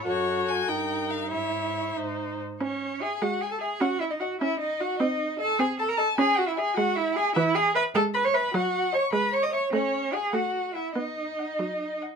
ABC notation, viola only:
X:1
M:6/8
L:1/8
Q:3/8=100
K:C#m
V:1 name="Viola"
F3 D3 | E3 D2 z | C3 G,3 | C3 C3 |
^B,3 B,3 | C3 G,3 | [K:E] E,3 G,3 | F,3 G,3 |
A,3 A,3 | B,3 F,3 |]